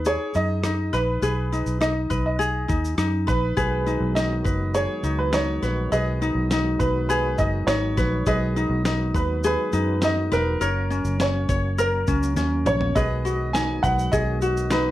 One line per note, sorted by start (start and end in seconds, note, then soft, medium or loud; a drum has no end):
0.00 0.16 D#2 medium
0.00 0.35 D#4 medium
0.00 0.06 G#4 medium
0.00 0.93 B4 medium
0.05 1.22 G#4 medium
0.05 0.33 C#5 medium
0.05 shaker medium
0.34 0.89 F#2 medium
0.34 0.63 D#4 medium
0.34 0.96 D#5 loud
0.34 shaker soft
0.64 1.52 D#4 medium
0.64 cross-stick loud
0.64 shaker medium
0.93 1.20 A#1 medium
0.93 1.22 B4 medium
0.93 1.78 B4 medium
0.93 cross-stick soft
0.93 shaker soft
1.22 1.63 B1 loud
1.22 2.39 G#4 medium
1.22 2.10 B4 medium
1.22 shaker medium
1.52 1.80 D#4 medium
1.52 shaker soft
1.66 2.07 B1 medium
1.66 shaker soft
1.81 2.68 D#4 medium
1.81 2.22 D#5 medium
1.81 cross-stick loud
1.81 shaker medium
2.10 2.65 B1 medium
2.10 2.39 B4 medium
2.10 kick medium
2.10 shaker soft
2.26 2.95 D#5 medium
2.39 3.56 G#4 medium
2.39 shaker medium
2.68 2.96 D#2 medium
2.68 2.97 D#4 medium
2.68 kick medium
2.68 shaker soft
2.85 shaker medium
2.98 3.25 F#2 medium
2.98 3.86 D#4 medium
2.98 cross-stick loud
2.98 shaker medium
3.27 3.55 A#1 medium
3.27 3.57 B4 medium
3.27 4.12 B4 loud
3.27 kick medium
3.27 cross-stick soft
3.27 shaker soft
3.57 3.98 B1 medium
3.57 8.23 D#3 medium
3.57 8.23 F#3 medium
3.57 10.57 G#3 medium
3.57 8.23 B3 medium
3.57 10.57 F#4 medium
3.57 4.74 G#4 medium
3.57 4.44 B4 medium
3.57 kick loud
3.57 shaker medium
3.86 4.16 D#4 medium
3.86 shaker soft
4.00 4.41 B1 medium
4.15 5.03 D#4 medium
4.15 4.76 D#5 medium
4.15 snare loud
4.15 shaker medium
4.44 4.86 F#1 medium
4.44 5.62 B4 medium
4.44 kick medium
4.44 shaker soft
4.74 5.92 G#4 medium
4.74 5.16 C#5 medium
4.74 shaker medium
5.03 5.58 C#2 medium
5.03 5.32 D#4 medium
5.03 shaker soft
5.19 5.32 B4 medium
5.33 6.21 D#4 medium
5.33 5.88 C#5 medium
5.33 snare loud
5.33 shaker medium
5.62 5.90 A#1 medium
5.62 5.92 B4 medium
5.62 snare soft
5.62 shaker soft
5.92 6.32 B1 medium
5.92 7.10 G#4 medium
5.92 6.80 B4 medium
5.92 6.83 D#5 medium
5.92 shaker medium
6.22 6.51 D#4 medium
6.22 shaker soft
6.35 6.76 B1 medium
6.51 7.39 D#4 medium
6.51 snare medium
6.51 shaker medium
6.79 7.35 B1 medium
6.79 7.07 B4 medium
6.79 7.97 B4 medium
6.79 kick medium
6.79 shaker soft
7.09 8.27 G#4 medium
7.09 7.39 B4 medium
7.09 shaker medium
7.38 7.66 F#1 medium
7.38 7.68 D#4 medium
7.38 7.69 D#5 medium
7.38 kick medium
7.38 shaker soft
7.67 7.94 G#1 medium
7.67 8.56 D#4 medium
7.67 8.28 C#5 medium
7.67 snare loud
7.67 shaker medium
7.97 8.24 A#1 medium
7.97 8.27 B4 medium
7.97 kick medium
7.97 snare soft
7.97 shaker soft
8.26 8.67 B1 loud
8.26 10.59 D#3 medium
8.26 12.92 F#3 medium
8.26 10.59 B3 medium
8.26 9.43 G#4 medium
8.26 9.13 B4 medium
8.26 9.18 D#5 loud
8.26 kick loud
8.26 shaker medium
8.56 8.84 D#4 medium
8.56 shaker soft
8.69 9.10 B1 medium
8.85 9.72 D#4 medium
8.85 snare loud
8.85 shaker medium
9.14 9.55 D#2 medium
9.14 10.30 B4 medium
9.14 9.45 B4 medium
9.14 kick medium
9.14 shaker soft
9.44 10.61 G#4 medium
9.44 10.00 B4 medium
9.44 shaker medium
9.72 10.28 F#2 medium
9.72 10.02 D#4 medium
9.72 shaker medium
10.02 10.67 D#4 medium
10.02 10.34 D#5 medium
10.02 snare loud
10.02 shaker medium
10.32 10.59 E1 medium
10.32 11.23 A#4 medium
10.32 10.61 B4 medium
10.32 snare soft
10.32 shaker soft
10.61 11.02 F#1 medium
10.61 12.94 A#3 medium
10.61 12.94 C#4 medium
10.61 11.77 A#4 medium
10.61 11.48 C#5 medium
10.61 shaker medium
10.90 11.19 C#4 medium
10.90 shaker soft
11.05 11.45 F#1 medium
11.05 shaker soft
11.20 12.06 C#4 medium
11.20 11.81 C#5 medium
11.20 snare loud
11.20 shaker medium
11.49 12.04 F#1 medium
11.49 12.65 C#5 medium
11.49 kick medium
11.49 shaker medium
11.78 12.96 A#4 medium
11.78 12.63 A#4 medium
11.78 shaker medium
12.07 12.35 C#2 medium
12.07 12.35 C#4 medium
12.07 kick medium
12.07 shaker medium
12.23 shaker medium
12.36 12.63 D#2 loud
12.36 13.01 C#4 medium
12.36 snare medium
12.36 shaker medium
12.65 12.93 A#1 medium
12.65 13.01 C#5 medium
12.65 12.97 C#5 medium
12.65 mid tom medium
12.65 shaker soft
12.81 floor tom medium
12.95 13.80 B1 medium
12.95 14.91 D#3 medium
12.95 14.91 F#3 medium
12.95 14.91 G#3 medium
12.95 14.91 B3 medium
12.95 14.91 F#4 medium
12.95 14.12 G#4 medium
12.95 13.84 B4 medium
12.95 13.56 D#5 loud
12.95 kick loud
12.95 shaker medium
13.25 13.54 F#4 medium
13.25 shaker soft
13.53 14.71 D#4 medium
13.53 13.81 G#5 loud
13.53 snare loud
13.53 shaker medium
13.83 14.11 B1 medium
13.83 14.91 B4 medium
13.83 14.13 F#5 medium
13.83 kick medium
13.83 shaker medium
13.99 shaker soft
14.12 14.91 B1 loud
14.12 14.42 G#4 medium
14.12 14.73 D#5 loud
14.12 kick medium
14.12 shaker medium
14.41 14.91 F#4 medium
14.41 shaker medium
14.57 shaker medium
14.71 14.91 D#4 medium
14.71 14.91 B4 medium
14.71 snare loud
14.71 shaker medium